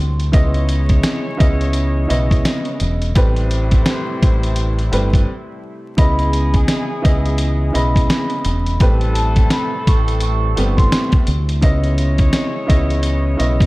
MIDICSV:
0, 0, Header, 1, 7, 480
1, 0, Start_track
1, 0, Key_signature, 4, "minor"
1, 0, Tempo, 705882
1, 226, Time_signature, 4, 2, 24, 8
1, 9290, End_track
2, 0, Start_track
2, 0, Title_t, "Vibraphone"
2, 0, Program_c, 0, 11
2, 4066, Note_on_c, 0, 83, 105
2, 4426, Note_off_c, 0, 83, 0
2, 4450, Note_on_c, 0, 80, 76
2, 5240, Note_off_c, 0, 80, 0
2, 5272, Note_on_c, 0, 83, 89
2, 5962, Note_off_c, 0, 83, 0
2, 6211, Note_on_c, 0, 81, 82
2, 6434, Note_off_c, 0, 81, 0
2, 6469, Note_on_c, 0, 83, 88
2, 6594, Note_off_c, 0, 83, 0
2, 6716, Note_on_c, 0, 85, 76
2, 6928, Note_off_c, 0, 85, 0
2, 6952, Note_on_c, 0, 85, 87
2, 7309, Note_off_c, 0, 85, 0
2, 7325, Note_on_c, 0, 84, 86
2, 7543, Note_off_c, 0, 84, 0
2, 9290, End_track
3, 0, Start_track
3, 0, Title_t, "Horn section"
3, 0, Program_c, 1, 61
3, 227, Note_on_c, 1, 64, 84
3, 227, Note_on_c, 1, 68, 88
3, 228, Note_on_c, 1, 73, 91
3, 1880, Note_off_c, 1, 64, 0
3, 1880, Note_off_c, 1, 68, 0
3, 1880, Note_off_c, 1, 73, 0
3, 2149, Note_on_c, 1, 67, 84
3, 2149, Note_on_c, 1, 72, 92
3, 2150, Note_on_c, 1, 64, 86
3, 3561, Note_off_c, 1, 64, 0
3, 3561, Note_off_c, 1, 67, 0
3, 3561, Note_off_c, 1, 72, 0
3, 4065, Note_on_c, 1, 64, 89
3, 4066, Note_on_c, 1, 56, 86
3, 4066, Note_on_c, 1, 68, 93
3, 5719, Note_off_c, 1, 56, 0
3, 5719, Note_off_c, 1, 64, 0
3, 5719, Note_off_c, 1, 68, 0
3, 5987, Note_on_c, 1, 60, 89
3, 5987, Note_on_c, 1, 64, 87
3, 5987, Note_on_c, 1, 69, 102
3, 7639, Note_off_c, 1, 69, 0
3, 7640, Note_off_c, 1, 60, 0
3, 7640, Note_off_c, 1, 64, 0
3, 7907, Note_on_c, 1, 64, 86
3, 7907, Note_on_c, 1, 68, 85
3, 7907, Note_on_c, 1, 73, 93
3, 9290, Note_off_c, 1, 64, 0
3, 9290, Note_off_c, 1, 68, 0
3, 9290, Note_off_c, 1, 73, 0
3, 9290, End_track
4, 0, Start_track
4, 0, Title_t, "Upright piano"
4, 0, Program_c, 2, 0
4, 218, Note_on_c, 2, 49, 93
4, 222, Note_on_c, 2, 59, 94
4, 226, Note_on_c, 2, 64, 89
4, 230, Note_on_c, 2, 75, 109
4, 788, Note_off_c, 2, 49, 0
4, 789, Note_off_c, 2, 59, 0
4, 792, Note_off_c, 2, 64, 0
4, 793, Note_off_c, 2, 75, 0
4, 934, Note_on_c, 2, 49, 98
4, 938, Note_on_c, 2, 59, 87
4, 942, Note_on_c, 2, 64, 94
4, 946, Note_on_c, 2, 75, 103
4, 1389, Note_off_c, 2, 49, 0
4, 1391, Note_off_c, 2, 59, 0
4, 1393, Note_off_c, 2, 64, 0
4, 1395, Note_off_c, 2, 75, 0
4, 1413, Note_on_c, 2, 49, 94
4, 1417, Note_on_c, 2, 59, 91
4, 1421, Note_on_c, 2, 64, 87
4, 1425, Note_on_c, 2, 75, 104
4, 2093, Note_off_c, 2, 49, 0
4, 2095, Note_off_c, 2, 59, 0
4, 2097, Note_off_c, 2, 64, 0
4, 2099, Note_off_c, 2, 75, 0
4, 2145, Note_on_c, 2, 45, 100
4, 2149, Note_on_c, 2, 55, 92
4, 2153, Note_on_c, 2, 60, 90
4, 2157, Note_on_c, 2, 71, 106
4, 3267, Note_off_c, 2, 45, 0
4, 3270, Note_off_c, 2, 55, 0
4, 3271, Note_off_c, 2, 60, 0
4, 3274, Note_off_c, 2, 71, 0
4, 3342, Note_on_c, 2, 45, 92
4, 3347, Note_on_c, 2, 55, 93
4, 3350, Note_on_c, 2, 60, 90
4, 3355, Note_on_c, 2, 71, 105
4, 3585, Note_off_c, 2, 45, 0
4, 3587, Note_off_c, 2, 55, 0
4, 3589, Note_off_c, 2, 60, 0
4, 3591, Note_off_c, 2, 71, 0
4, 4059, Note_on_c, 2, 49, 92
4, 4063, Note_on_c, 2, 59, 92
4, 4068, Note_on_c, 2, 64, 86
4, 4071, Note_on_c, 2, 75, 110
4, 4628, Note_off_c, 2, 49, 0
4, 4630, Note_off_c, 2, 59, 0
4, 4632, Note_off_c, 2, 64, 0
4, 4634, Note_off_c, 2, 75, 0
4, 4773, Note_on_c, 2, 49, 94
4, 4777, Note_on_c, 2, 59, 89
4, 4781, Note_on_c, 2, 64, 90
4, 4785, Note_on_c, 2, 75, 101
4, 5229, Note_off_c, 2, 49, 0
4, 5231, Note_off_c, 2, 59, 0
4, 5233, Note_off_c, 2, 64, 0
4, 5235, Note_off_c, 2, 75, 0
4, 5253, Note_on_c, 2, 49, 93
4, 5256, Note_on_c, 2, 59, 91
4, 5261, Note_on_c, 2, 64, 87
4, 5265, Note_on_c, 2, 75, 104
4, 5933, Note_off_c, 2, 49, 0
4, 5935, Note_off_c, 2, 59, 0
4, 5937, Note_off_c, 2, 64, 0
4, 5939, Note_off_c, 2, 75, 0
4, 5984, Note_on_c, 2, 45, 98
4, 5989, Note_on_c, 2, 55, 92
4, 5993, Note_on_c, 2, 60, 88
4, 5997, Note_on_c, 2, 71, 109
4, 7107, Note_off_c, 2, 45, 0
4, 7109, Note_off_c, 2, 55, 0
4, 7111, Note_off_c, 2, 60, 0
4, 7113, Note_off_c, 2, 71, 0
4, 7181, Note_on_c, 2, 45, 94
4, 7186, Note_on_c, 2, 55, 92
4, 7190, Note_on_c, 2, 60, 92
4, 7194, Note_on_c, 2, 59, 113
4, 7633, Note_off_c, 2, 45, 0
4, 7635, Note_off_c, 2, 55, 0
4, 7637, Note_off_c, 2, 60, 0
4, 7639, Note_off_c, 2, 59, 0
4, 7898, Note_on_c, 2, 49, 95
4, 7903, Note_on_c, 2, 59, 92
4, 7906, Note_on_c, 2, 64, 84
4, 7911, Note_on_c, 2, 75, 111
4, 8468, Note_off_c, 2, 49, 0
4, 8470, Note_off_c, 2, 59, 0
4, 8472, Note_off_c, 2, 64, 0
4, 8474, Note_off_c, 2, 75, 0
4, 8613, Note_on_c, 2, 49, 96
4, 8617, Note_on_c, 2, 59, 91
4, 8621, Note_on_c, 2, 64, 89
4, 8626, Note_on_c, 2, 75, 104
4, 9069, Note_off_c, 2, 49, 0
4, 9071, Note_off_c, 2, 59, 0
4, 9073, Note_off_c, 2, 64, 0
4, 9075, Note_off_c, 2, 75, 0
4, 9093, Note_on_c, 2, 49, 99
4, 9096, Note_on_c, 2, 59, 91
4, 9101, Note_on_c, 2, 64, 91
4, 9105, Note_on_c, 2, 75, 106
4, 9290, Note_off_c, 2, 49, 0
4, 9290, Note_off_c, 2, 59, 0
4, 9290, Note_off_c, 2, 64, 0
4, 9290, Note_off_c, 2, 75, 0
4, 9290, End_track
5, 0, Start_track
5, 0, Title_t, "Analog synth pad"
5, 0, Program_c, 3, 89
5, 0, Note_on_c, 3, 48, 83
5, 0, Note_on_c, 3, 55, 75
5, 0, Note_on_c, 3, 57, 81
5, 0, Note_on_c, 3, 64, 97
5, 208, Note_off_c, 3, 48, 0
5, 208, Note_off_c, 3, 55, 0
5, 208, Note_off_c, 3, 57, 0
5, 208, Note_off_c, 3, 64, 0
5, 233, Note_on_c, 3, 52, 78
5, 233, Note_on_c, 3, 56, 79
5, 233, Note_on_c, 3, 75, 92
5, 234, Note_on_c, 3, 49, 89
5, 2131, Note_off_c, 3, 49, 0
5, 2131, Note_off_c, 3, 52, 0
5, 2131, Note_off_c, 3, 56, 0
5, 2131, Note_off_c, 3, 75, 0
5, 2147, Note_on_c, 3, 55, 79
5, 2147, Note_on_c, 3, 57, 72
5, 2147, Note_on_c, 3, 64, 93
5, 2148, Note_on_c, 3, 48, 85
5, 4048, Note_off_c, 3, 48, 0
5, 4048, Note_off_c, 3, 55, 0
5, 4048, Note_off_c, 3, 57, 0
5, 4048, Note_off_c, 3, 64, 0
5, 4063, Note_on_c, 3, 49, 84
5, 4063, Note_on_c, 3, 52, 74
5, 4063, Note_on_c, 3, 56, 73
5, 4063, Note_on_c, 3, 75, 92
5, 5966, Note_off_c, 3, 49, 0
5, 5966, Note_off_c, 3, 52, 0
5, 5966, Note_off_c, 3, 56, 0
5, 5966, Note_off_c, 3, 75, 0
5, 5984, Note_on_c, 3, 64, 96
5, 5985, Note_on_c, 3, 48, 83
5, 5985, Note_on_c, 3, 55, 77
5, 5985, Note_on_c, 3, 57, 82
5, 7886, Note_off_c, 3, 64, 0
5, 7887, Note_off_c, 3, 48, 0
5, 7887, Note_off_c, 3, 55, 0
5, 7887, Note_off_c, 3, 57, 0
5, 7913, Note_on_c, 3, 49, 89
5, 7913, Note_on_c, 3, 52, 78
5, 7913, Note_on_c, 3, 56, 81
5, 7913, Note_on_c, 3, 75, 94
5, 9290, Note_off_c, 3, 49, 0
5, 9290, Note_off_c, 3, 52, 0
5, 9290, Note_off_c, 3, 56, 0
5, 9290, Note_off_c, 3, 75, 0
5, 9290, End_track
6, 0, Start_track
6, 0, Title_t, "Fingered electric bass"
6, 0, Program_c, 4, 33
6, 0, Note_on_c, 4, 38, 90
6, 208, Note_off_c, 4, 38, 0
6, 229, Note_on_c, 4, 37, 101
6, 681, Note_off_c, 4, 37, 0
6, 956, Note_on_c, 4, 37, 94
6, 1404, Note_off_c, 4, 37, 0
6, 1430, Note_on_c, 4, 35, 92
6, 1648, Note_off_c, 4, 35, 0
6, 1910, Note_on_c, 4, 28, 99
6, 2128, Note_off_c, 4, 28, 0
6, 2148, Note_on_c, 4, 33, 101
6, 2600, Note_off_c, 4, 33, 0
6, 2875, Note_on_c, 4, 33, 94
6, 3324, Note_off_c, 4, 33, 0
6, 3350, Note_on_c, 4, 31, 93
6, 3568, Note_off_c, 4, 31, 0
6, 4068, Note_on_c, 4, 37, 104
6, 4520, Note_off_c, 4, 37, 0
6, 4795, Note_on_c, 4, 37, 94
6, 5243, Note_off_c, 4, 37, 0
6, 5269, Note_on_c, 4, 35, 90
6, 5488, Note_off_c, 4, 35, 0
6, 5749, Note_on_c, 4, 28, 104
6, 5967, Note_off_c, 4, 28, 0
6, 5988, Note_on_c, 4, 33, 104
6, 6440, Note_off_c, 4, 33, 0
6, 6715, Note_on_c, 4, 33, 98
6, 7164, Note_off_c, 4, 33, 0
6, 7190, Note_on_c, 4, 31, 94
6, 7408, Note_off_c, 4, 31, 0
6, 7670, Note_on_c, 4, 38, 93
6, 7888, Note_off_c, 4, 38, 0
6, 7908, Note_on_c, 4, 37, 107
6, 8360, Note_off_c, 4, 37, 0
6, 8635, Note_on_c, 4, 37, 96
6, 9084, Note_off_c, 4, 37, 0
6, 9109, Note_on_c, 4, 35, 93
6, 9290, Note_off_c, 4, 35, 0
6, 9290, End_track
7, 0, Start_track
7, 0, Title_t, "Drums"
7, 134, Note_on_c, 9, 42, 52
7, 202, Note_off_c, 9, 42, 0
7, 226, Note_on_c, 9, 42, 86
7, 228, Note_on_c, 9, 36, 115
7, 294, Note_off_c, 9, 42, 0
7, 296, Note_off_c, 9, 36, 0
7, 369, Note_on_c, 9, 42, 37
7, 437, Note_off_c, 9, 42, 0
7, 467, Note_on_c, 9, 42, 75
7, 535, Note_off_c, 9, 42, 0
7, 606, Note_on_c, 9, 42, 49
7, 609, Note_on_c, 9, 36, 91
7, 674, Note_off_c, 9, 42, 0
7, 677, Note_off_c, 9, 36, 0
7, 703, Note_on_c, 9, 26, 68
7, 704, Note_on_c, 9, 38, 126
7, 706, Note_on_c, 9, 42, 101
7, 771, Note_off_c, 9, 26, 0
7, 772, Note_off_c, 9, 38, 0
7, 774, Note_off_c, 9, 42, 0
7, 954, Note_on_c, 9, 36, 96
7, 954, Note_on_c, 9, 42, 74
7, 1022, Note_off_c, 9, 36, 0
7, 1022, Note_off_c, 9, 42, 0
7, 1094, Note_on_c, 9, 42, 46
7, 1162, Note_off_c, 9, 42, 0
7, 1179, Note_on_c, 9, 42, 86
7, 1247, Note_off_c, 9, 42, 0
7, 1429, Note_on_c, 9, 42, 82
7, 1497, Note_off_c, 9, 42, 0
7, 1571, Note_on_c, 9, 36, 99
7, 1579, Note_on_c, 9, 42, 51
7, 1639, Note_off_c, 9, 36, 0
7, 1647, Note_off_c, 9, 42, 0
7, 1667, Note_on_c, 9, 26, 64
7, 1668, Note_on_c, 9, 38, 123
7, 1668, Note_on_c, 9, 42, 107
7, 1735, Note_off_c, 9, 26, 0
7, 1736, Note_off_c, 9, 38, 0
7, 1736, Note_off_c, 9, 42, 0
7, 1803, Note_on_c, 9, 42, 38
7, 1871, Note_off_c, 9, 42, 0
7, 1903, Note_on_c, 9, 42, 86
7, 1971, Note_off_c, 9, 42, 0
7, 2051, Note_on_c, 9, 42, 53
7, 2119, Note_off_c, 9, 42, 0
7, 2145, Note_on_c, 9, 42, 87
7, 2147, Note_on_c, 9, 36, 118
7, 2213, Note_off_c, 9, 42, 0
7, 2215, Note_off_c, 9, 36, 0
7, 2288, Note_on_c, 9, 42, 37
7, 2356, Note_off_c, 9, 42, 0
7, 2386, Note_on_c, 9, 42, 76
7, 2454, Note_off_c, 9, 42, 0
7, 2525, Note_on_c, 9, 42, 48
7, 2528, Note_on_c, 9, 36, 93
7, 2593, Note_off_c, 9, 42, 0
7, 2596, Note_off_c, 9, 36, 0
7, 2623, Note_on_c, 9, 26, 67
7, 2623, Note_on_c, 9, 38, 125
7, 2625, Note_on_c, 9, 42, 100
7, 2691, Note_off_c, 9, 26, 0
7, 2691, Note_off_c, 9, 38, 0
7, 2693, Note_off_c, 9, 42, 0
7, 2873, Note_on_c, 9, 36, 98
7, 2873, Note_on_c, 9, 42, 76
7, 2941, Note_off_c, 9, 36, 0
7, 2941, Note_off_c, 9, 42, 0
7, 3015, Note_on_c, 9, 42, 48
7, 3083, Note_off_c, 9, 42, 0
7, 3100, Note_on_c, 9, 42, 82
7, 3168, Note_off_c, 9, 42, 0
7, 3255, Note_on_c, 9, 42, 38
7, 3323, Note_off_c, 9, 42, 0
7, 3350, Note_on_c, 9, 42, 82
7, 3418, Note_off_c, 9, 42, 0
7, 3492, Note_on_c, 9, 36, 96
7, 3501, Note_on_c, 9, 42, 52
7, 3560, Note_off_c, 9, 36, 0
7, 3569, Note_off_c, 9, 42, 0
7, 4065, Note_on_c, 9, 42, 92
7, 4067, Note_on_c, 9, 36, 117
7, 4133, Note_off_c, 9, 42, 0
7, 4135, Note_off_c, 9, 36, 0
7, 4208, Note_on_c, 9, 42, 37
7, 4276, Note_off_c, 9, 42, 0
7, 4306, Note_on_c, 9, 42, 73
7, 4374, Note_off_c, 9, 42, 0
7, 4445, Note_on_c, 9, 42, 46
7, 4448, Note_on_c, 9, 36, 95
7, 4513, Note_off_c, 9, 42, 0
7, 4516, Note_off_c, 9, 36, 0
7, 4543, Note_on_c, 9, 26, 67
7, 4543, Note_on_c, 9, 38, 123
7, 4545, Note_on_c, 9, 42, 100
7, 4611, Note_off_c, 9, 26, 0
7, 4611, Note_off_c, 9, 38, 0
7, 4613, Note_off_c, 9, 42, 0
7, 4793, Note_on_c, 9, 36, 102
7, 4794, Note_on_c, 9, 42, 78
7, 4861, Note_off_c, 9, 36, 0
7, 4862, Note_off_c, 9, 42, 0
7, 4934, Note_on_c, 9, 42, 48
7, 5002, Note_off_c, 9, 42, 0
7, 5019, Note_on_c, 9, 42, 84
7, 5087, Note_off_c, 9, 42, 0
7, 5270, Note_on_c, 9, 42, 80
7, 5338, Note_off_c, 9, 42, 0
7, 5411, Note_on_c, 9, 36, 96
7, 5419, Note_on_c, 9, 42, 52
7, 5479, Note_off_c, 9, 36, 0
7, 5487, Note_off_c, 9, 42, 0
7, 5506, Note_on_c, 9, 26, 62
7, 5508, Note_on_c, 9, 38, 121
7, 5508, Note_on_c, 9, 42, 103
7, 5574, Note_off_c, 9, 26, 0
7, 5576, Note_off_c, 9, 38, 0
7, 5576, Note_off_c, 9, 42, 0
7, 5643, Note_on_c, 9, 42, 37
7, 5711, Note_off_c, 9, 42, 0
7, 5743, Note_on_c, 9, 42, 83
7, 5811, Note_off_c, 9, 42, 0
7, 5892, Note_on_c, 9, 42, 52
7, 5960, Note_off_c, 9, 42, 0
7, 5985, Note_on_c, 9, 42, 87
7, 5987, Note_on_c, 9, 36, 116
7, 6053, Note_off_c, 9, 42, 0
7, 6055, Note_off_c, 9, 36, 0
7, 6127, Note_on_c, 9, 42, 36
7, 6195, Note_off_c, 9, 42, 0
7, 6225, Note_on_c, 9, 42, 73
7, 6293, Note_off_c, 9, 42, 0
7, 6364, Note_on_c, 9, 42, 49
7, 6368, Note_on_c, 9, 36, 90
7, 6432, Note_off_c, 9, 42, 0
7, 6436, Note_off_c, 9, 36, 0
7, 6463, Note_on_c, 9, 26, 70
7, 6463, Note_on_c, 9, 38, 120
7, 6464, Note_on_c, 9, 42, 100
7, 6531, Note_off_c, 9, 26, 0
7, 6531, Note_off_c, 9, 38, 0
7, 6532, Note_off_c, 9, 42, 0
7, 6713, Note_on_c, 9, 36, 100
7, 6714, Note_on_c, 9, 42, 75
7, 6781, Note_off_c, 9, 36, 0
7, 6782, Note_off_c, 9, 42, 0
7, 6854, Note_on_c, 9, 42, 50
7, 6922, Note_off_c, 9, 42, 0
7, 6939, Note_on_c, 9, 42, 87
7, 7007, Note_off_c, 9, 42, 0
7, 7189, Note_on_c, 9, 42, 83
7, 7257, Note_off_c, 9, 42, 0
7, 7331, Note_on_c, 9, 36, 99
7, 7339, Note_on_c, 9, 42, 51
7, 7399, Note_off_c, 9, 36, 0
7, 7407, Note_off_c, 9, 42, 0
7, 7428, Note_on_c, 9, 26, 65
7, 7428, Note_on_c, 9, 38, 118
7, 7428, Note_on_c, 9, 42, 108
7, 7496, Note_off_c, 9, 26, 0
7, 7496, Note_off_c, 9, 38, 0
7, 7496, Note_off_c, 9, 42, 0
7, 7562, Note_on_c, 9, 42, 38
7, 7566, Note_on_c, 9, 36, 107
7, 7630, Note_off_c, 9, 42, 0
7, 7634, Note_off_c, 9, 36, 0
7, 7663, Note_on_c, 9, 42, 85
7, 7731, Note_off_c, 9, 42, 0
7, 7812, Note_on_c, 9, 42, 52
7, 7880, Note_off_c, 9, 42, 0
7, 7905, Note_on_c, 9, 42, 88
7, 7907, Note_on_c, 9, 36, 111
7, 7973, Note_off_c, 9, 42, 0
7, 7975, Note_off_c, 9, 36, 0
7, 8048, Note_on_c, 9, 42, 35
7, 8116, Note_off_c, 9, 42, 0
7, 8146, Note_on_c, 9, 42, 73
7, 8214, Note_off_c, 9, 42, 0
7, 8285, Note_on_c, 9, 42, 49
7, 8288, Note_on_c, 9, 36, 88
7, 8353, Note_off_c, 9, 42, 0
7, 8356, Note_off_c, 9, 36, 0
7, 8383, Note_on_c, 9, 26, 70
7, 8384, Note_on_c, 9, 38, 120
7, 8385, Note_on_c, 9, 42, 98
7, 8451, Note_off_c, 9, 26, 0
7, 8452, Note_off_c, 9, 38, 0
7, 8453, Note_off_c, 9, 42, 0
7, 8633, Note_on_c, 9, 36, 100
7, 8634, Note_on_c, 9, 42, 77
7, 8701, Note_off_c, 9, 36, 0
7, 8702, Note_off_c, 9, 42, 0
7, 8775, Note_on_c, 9, 42, 50
7, 8843, Note_off_c, 9, 42, 0
7, 8859, Note_on_c, 9, 42, 83
7, 8927, Note_off_c, 9, 42, 0
7, 9110, Note_on_c, 9, 42, 80
7, 9178, Note_off_c, 9, 42, 0
7, 9251, Note_on_c, 9, 36, 99
7, 9260, Note_on_c, 9, 42, 51
7, 9290, Note_off_c, 9, 36, 0
7, 9290, Note_off_c, 9, 42, 0
7, 9290, End_track
0, 0, End_of_file